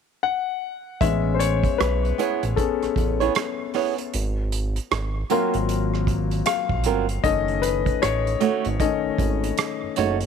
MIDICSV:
0, 0, Header, 1, 6, 480
1, 0, Start_track
1, 0, Tempo, 779221
1, 618, Time_signature, 4, 2, 24, 8
1, 6320, End_track
2, 0, Start_track
2, 0, Title_t, "Nylon-string guitar"
2, 0, Program_c, 0, 24
2, 1344, Note_on_c, 0, 59, 73
2, 1349, Note_on_c, 0, 64, 79
2, 1352, Note_on_c, 0, 68, 82
2, 1353, Note_on_c, 0, 73, 85
2, 1495, Note_off_c, 0, 59, 0
2, 1497, Note_off_c, 0, 64, 0
2, 1499, Note_off_c, 0, 68, 0
2, 1499, Note_off_c, 0, 73, 0
2, 1973, Note_on_c, 0, 73, 59
2, 1977, Note_on_c, 0, 68, 53
2, 1979, Note_on_c, 0, 64, 50
2, 1981, Note_on_c, 0, 59, 48
2, 2048, Note_off_c, 0, 73, 0
2, 2050, Note_off_c, 0, 68, 0
2, 2051, Note_off_c, 0, 64, 0
2, 2052, Note_off_c, 0, 59, 0
2, 2305, Note_on_c, 0, 59, 52
2, 2309, Note_on_c, 0, 68, 58
2, 2311, Note_on_c, 0, 64, 59
2, 2312, Note_on_c, 0, 73, 67
2, 2425, Note_off_c, 0, 59, 0
2, 2427, Note_off_c, 0, 68, 0
2, 2428, Note_off_c, 0, 64, 0
2, 2429, Note_off_c, 0, 73, 0
2, 3263, Note_on_c, 0, 54, 78
2, 3267, Note_on_c, 0, 60, 69
2, 3269, Note_on_c, 0, 65, 82
2, 3272, Note_on_c, 0, 70, 86
2, 3414, Note_off_c, 0, 54, 0
2, 3416, Note_off_c, 0, 60, 0
2, 3418, Note_off_c, 0, 65, 0
2, 3419, Note_off_c, 0, 70, 0
2, 4223, Note_on_c, 0, 54, 61
2, 4227, Note_on_c, 0, 60, 64
2, 4228, Note_on_c, 0, 65, 62
2, 4228, Note_on_c, 0, 70, 66
2, 4344, Note_off_c, 0, 54, 0
2, 4346, Note_off_c, 0, 60, 0
2, 4347, Note_off_c, 0, 65, 0
2, 4347, Note_off_c, 0, 70, 0
2, 5177, Note_on_c, 0, 57, 85
2, 5182, Note_on_c, 0, 63, 78
2, 5183, Note_on_c, 0, 66, 85
2, 5186, Note_on_c, 0, 73, 92
2, 5331, Note_off_c, 0, 57, 0
2, 5334, Note_off_c, 0, 63, 0
2, 5334, Note_off_c, 0, 66, 0
2, 5336, Note_off_c, 0, 73, 0
2, 6140, Note_on_c, 0, 57, 62
2, 6145, Note_on_c, 0, 63, 70
2, 6146, Note_on_c, 0, 66, 71
2, 6146, Note_on_c, 0, 73, 74
2, 6262, Note_off_c, 0, 57, 0
2, 6265, Note_off_c, 0, 63, 0
2, 6265, Note_off_c, 0, 66, 0
2, 6266, Note_off_c, 0, 73, 0
2, 6320, End_track
3, 0, Start_track
3, 0, Title_t, "Grand piano"
3, 0, Program_c, 1, 0
3, 142, Note_on_c, 1, 78, 88
3, 621, Note_on_c, 1, 76, 88
3, 625, Note_on_c, 1, 56, 49
3, 632, Note_on_c, 1, 59, 46
3, 634, Note_off_c, 1, 78, 0
3, 635, Note_on_c, 1, 61, 54
3, 724, Control_c, 1, 64, 127
3, 828, Note_on_c, 1, 72, 56
3, 832, Note_off_c, 1, 76, 0
3, 859, Note_on_c, 1, 73, 79
3, 860, Note_off_c, 1, 72, 0
3, 1099, Note_on_c, 1, 71, 78
3, 1106, Note_off_c, 1, 73, 0
3, 1317, Note_off_c, 1, 56, 0
3, 1320, Note_off_c, 1, 59, 0
3, 1322, Note_off_c, 1, 61, 0
3, 1579, Note_on_c, 1, 69, 62
3, 1586, Note_on_c, 1, 68, 39
3, 1588, Note_on_c, 1, 59, 40
3, 1591, Note_on_c, 1, 61, 44
3, 1593, Note_off_c, 1, 71, 0
3, 1798, Note_off_c, 1, 68, 0
3, 1799, Note_off_c, 1, 59, 0
3, 1801, Note_off_c, 1, 61, 0
3, 2274, Note_off_c, 1, 69, 0
3, 2547, Control_c, 1, 64, 0
3, 2671, Control_c, 1, 64, 127
3, 3268, Note_on_c, 1, 54, 54
3, 3271, Note_on_c, 1, 58, 45
3, 3273, Note_on_c, 1, 60, 44
3, 3275, Note_on_c, 1, 65, 55
3, 3958, Note_off_c, 1, 54, 0
3, 3960, Note_off_c, 1, 58, 0
3, 3961, Note_off_c, 1, 60, 0
3, 3962, Note_off_c, 1, 65, 0
3, 3979, Note_on_c, 1, 77, 85
3, 4457, Note_on_c, 1, 75, 92
3, 4464, Note_on_c, 1, 51, 54
3, 4466, Control_c, 1, 64, 0
3, 4468, Note_on_c, 1, 57, 47
3, 4469, Note_on_c, 1, 61, 53
3, 4473, Note_off_c, 1, 77, 0
3, 4588, Control_c, 1, 64, 127
3, 4693, Note_on_c, 1, 71, 79
3, 4705, Note_off_c, 1, 75, 0
3, 4747, Note_off_c, 1, 71, 0
3, 4940, Note_on_c, 1, 73, 85
3, 5156, Note_off_c, 1, 51, 0
3, 5158, Note_off_c, 1, 57, 0
3, 5159, Note_off_c, 1, 61, 0
3, 5423, Note_on_c, 1, 75, 73
3, 5428, Note_on_c, 1, 51, 42
3, 5428, Note_on_c, 1, 57, 39
3, 5431, Note_on_c, 1, 61, 50
3, 5433, Note_off_c, 1, 73, 0
3, 5639, Note_off_c, 1, 51, 0
3, 5640, Note_off_c, 1, 57, 0
3, 5641, Note_off_c, 1, 61, 0
3, 6116, Note_off_c, 1, 75, 0
3, 6320, End_track
4, 0, Start_track
4, 0, Title_t, "Analog synth bass"
4, 0, Program_c, 2, 38
4, 627, Note_on_c, 2, 33, 88
4, 1029, Note_off_c, 2, 33, 0
4, 1113, Note_on_c, 2, 35, 83
4, 1309, Note_off_c, 2, 35, 0
4, 1497, Note_on_c, 2, 33, 91
4, 1571, Note_off_c, 2, 33, 0
4, 1741, Note_on_c, 2, 33, 44
4, 1774, Note_off_c, 2, 33, 0
4, 1830, Note_on_c, 2, 33, 86
4, 2028, Note_off_c, 2, 33, 0
4, 2551, Note_on_c, 2, 32, 85
4, 2951, Note_off_c, 2, 32, 0
4, 3029, Note_on_c, 2, 32, 77
4, 3227, Note_off_c, 2, 32, 0
4, 3416, Note_on_c, 2, 32, 79
4, 3959, Note_off_c, 2, 32, 0
4, 4130, Note_on_c, 2, 34, 84
4, 4232, Note_on_c, 2, 31, 99
4, 4241, Note_off_c, 2, 34, 0
4, 4429, Note_off_c, 2, 31, 0
4, 4463, Note_on_c, 2, 30, 84
4, 4866, Note_off_c, 2, 30, 0
4, 4951, Note_on_c, 2, 33, 84
4, 5148, Note_off_c, 2, 33, 0
4, 5334, Note_on_c, 2, 32, 78
4, 5409, Note_off_c, 2, 32, 0
4, 5575, Note_on_c, 2, 32, 49
4, 5610, Note_off_c, 2, 32, 0
4, 5662, Note_on_c, 2, 32, 80
4, 5863, Note_off_c, 2, 32, 0
4, 6053, Note_on_c, 2, 30, 43
4, 6088, Note_off_c, 2, 30, 0
4, 6147, Note_on_c, 2, 30, 93
4, 6320, Note_off_c, 2, 30, 0
4, 6320, End_track
5, 0, Start_track
5, 0, Title_t, "Muted nylon-string guitar strokes"
5, 1107, Note_on_c, 9, 29, 41
5, 1169, Note_off_c, 9, 29, 0
5, 3025, Note_on_c, 9, 29, 39
5, 3086, Note_off_c, 9, 29, 0
5, 4945, Note_on_c, 9, 29, 43
5, 5006, Note_off_c, 9, 29, 0
5, 6320, End_track
6, 0, Start_track
6, 0, Title_t, "Drums"
6, 621, Note_on_c, 9, 36, 93
6, 626, Note_on_c, 9, 42, 74
6, 683, Note_off_c, 9, 36, 0
6, 688, Note_off_c, 9, 42, 0
6, 864, Note_on_c, 9, 42, 62
6, 926, Note_off_c, 9, 42, 0
6, 1007, Note_on_c, 9, 36, 79
6, 1013, Note_on_c, 9, 42, 42
6, 1069, Note_off_c, 9, 36, 0
6, 1075, Note_off_c, 9, 42, 0
6, 1111, Note_on_c, 9, 42, 59
6, 1112, Note_on_c, 9, 37, 90
6, 1173, Note_off_c, 9, 42, 0
6, 1174, Note_off_c, 9, 37, 0
6, 1262, Note_on_c, 9, 42, 29
6, 1324, Note_off_c, 9, 42, 0
6, 1351, Note_on_c, 9, 42, 59
6, 1412, Note_off_c, 9, 42, 0
6, 1497, Note_on_c, 9, 42, 45
6, 1558, Note_off_c, 9, 42, 0
6, 1585, Note_on_c, 9, 36, 74
6, 1590, Note_on_c, 9, 42, 67
6, 1647, Note_off_c, 9, 36, 0
6, 1652, Note_off_c, 9, 42, 0
6, 1740, Note_on_c, 9, 42, 31
6, 1743, Note_on_c, 9, 37, 30
6, 1802, Note_off_c, 9, 42, 0
6, 1805, Note_off_c, 9, 37, 0
6, 1823, Note_on_c, 9, 36, 76
6, 1832, Note_on_c, 9, 42, 51
6, 1885, Note_off_c, 9, 36, 0
6, 1894, Note_off_c, 9, 42, 0
6, 1978, Note_on_c, 9, 42, 40
6, 2039, Note_off_c, 9, 42, 0
6, 2064, Note_on_c, 9, 42, 76
6, 2071, Note_on_c, 9, 37, 104
6, 2126, Note_off_c, 9, 42, 0
6, 2133, Note_off_c, 9, 37, 0
6, 2302, Note_on_c, 9, 46, 40
6, 2308, Note_on_c, 9, 37, 29
6, 2364, Note_off_c, 9, 46, 0
6, 2369, Note_off_c, 9, 37, 0
6, 2454, Note_on_c, 9, 42, 47
6, 2515, Note_off_c, 9, 42, 0
6, 2547, Note_on_c, 9, 42, 74
6, 2609, Note_off_c, 9, 42, 0
6, 2786, Note_on_c, 9, 42, 62
6, 2848, Note_off_c, 9, 42, 0
6, 2932, Note_on_c, 9, 42, 40
6, 2994, Note_off_c, 9, 42, 0
6, 3027, Note_on_c, 9, 42, 60
6, 3028, Note_on_c, 9, 37, 97
6, 3089, Note_off_c, 9, 42, 0
6, 3090, Note_off_c, 9, 37, 0
6, 3265, Note_on_c, 9, 42, 58
6, 3327, Note_off_c, 9, 42, 0
6, 3411, Note_on_c, 9, 42, 46
6, 3472, Note_off_c, 9, 42, 0
6, 3504, Note_on_c, 9, 42, 64
6, 3566, Note_off_c, 9, 42, 0
6, 3657, Note_on_c, 9, 37, 31
6, 3718, Note_off_c, 9, 37, 0
6, 3740, Note_on_c, 9, 36, 86
6, 3745, Note_on_c, 9, 42, 52
6, 3802, Note_off_c, 9, 36, 0
6, 3807, Note_off_c, 9, 42, 0
6, 3889, Note_on_c, 9, 42, 41
6, 3951, Note_off_c, 9, 42, 0
6, 3978, Note_on_c, 9, 42, 75
6, 3985, Note_on_c, 9, 37, 105
6, 4039, Note_off_c, 9, 42, 0
6, 4046, Note_off_c, 9, 37, 0
6, 4124, Note_on_c, 9, 36, 87
6, 4185, Note_off_c, 9, 36, 0
6, 4211, Note_on_c, 9, 42, 60
6, 4273, Note_off_c, 9, 42, 0
6, 4366, Note_on_c, 9, 42, 48
6, 4428, Note_off_c, 9, 42, 0
6, 4458, Note_on_c, 9, 36, 92
6, 4461, Note_on_c, 9, 42, 75
6, 4520, Note_off_c, 9, 36, 0
6, 4523, Note_off_c, 9, 42, 0
6, 4609, Note_on_c, 9, 42, 29
6, 4670, Note_off_c, 9, 42, 0
6, 4700, Note_on_c, 9, 42, 64
6, 4761, Note_off_c, 9, 42, 0
6, 4843, Note_on_c, 9, 36, 87
6, 4847, Note_on_c, 9, 42, 41
6, 4905, Note_off_c, 9, 36, 0
6, 4908, Note_off_c, 9, 42, 0
6, 4944, Note_on_c, 9, 42, 63
6, 4945, Note_on_c, 9, 37, 89
6, 5005, Note_off_c, 9, 42, 0
6, 5006, Note_off_c, 9, 37, 0
6, 5095, Note_on_c, 9, 42, 31
6, 5156, Note_off_c, 9, 42, 0
6, 5179, Note_on_c, 9, 42, 52
6, 5240, Note_off_c, 9, 42, 0
6, 5326, Note_on_c, 9, 42, 49
6, 5388, Note_off_c, 9, 42, 0
6, 5419, Note_on_c, 9, 36, 78
6, 5422, Note_on_c, 9, 42, 73
6, 5481, Note_off_c, 9, 36, 0
6, 5483, Note_off_c, 9, 42, 0
6, 5658, Note_on_c, 9, 36, 77
6, 5663, Note_on_c, 9, 42, 51
6, 5720, Note_off_c, 9, 36, 0
6, 5724, Note_off_c, 9, 42, 0
6, 5813, Note_on_c, 9, 42, 42
6, 5874, Note_off_c, 9, 42, 0
6, 5898, Note_on_c, 9, 42, 76
6, 5905, Note_on_c, 9, 37, 108
6, 5960, Note_off_c, 9, 42, 0
6, 5967, Note_off_c, 9, 37, 0
6, 6137, Note_on_c, 9, 42, 58
6, 6142, Note_on_c, 9, 37, 31
6, 6198, Note_off_c, 9, 42, 0
6, 6204, Note_off_c, 9, 37, 0
6, 6286, Note_on_c, 9, 42, 48
6, 6320, Note_off_c, 9, 42, 0
6, 6320, End_track
0, 0, End_of_file